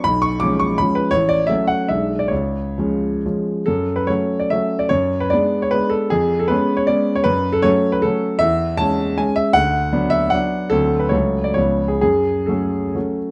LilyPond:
<<
  \new Staff \with { instrumentName = "Grand piano" } { \time 3/4 \key fis \minor \tempo 4 = 150 b''8 cis'''8 d'''8 cis'''8 b''8 b'8 | cis''8 d''8 e''8 fis''8 e''8. d''16 | cis''2 r4 | a'8. b'16 cis''8. d''16 e''8. d''16 |
cis''8. b'16 d''8. cis''16 b'8 a'8 | gis'8. a'16 b'8. cis''16 d''8. cis''16 | b'8. a'16 cis''8. b'16 a'4 | e''4 a''4 gis''8 e''8 |
fis''4. e''8 fis''4 | a'8. b'16 cis''8. d''16 cis''8. gis'16 | gis'4 a'4. r8 | }
  \new Staff \with { instrumentName = "Grand piano" } { \clef bass \time 3/4 \key fis \minor b,,4 <eis gis cis'>4 <eis gis cis'>4 | a,,4 <fis a cis'>4 <b,, gis d'>4 | cis,4 <eis gis cis'>4 <eis gis cis'>4 | fis,4 <fis a cis'>4 <fis a cis'>4 |
fis,4 <gis b d'>4 <gis b d'>4 | eis,4 <gis b cis'>4 <gis b cis'>4 | fis,4 <fis a cis'>4 <fis a cis'>4 | e,4 <gis cis'>4 <gis cis'>4 |
d,4 <fis b d'>4 <fis b d'>4 | <d, fis c'>4 <cis, fis a cis'>4 <cis, eis b cis'>4 | fis,4 <fis a cis'>4 <fis a cis'>4 | }
>>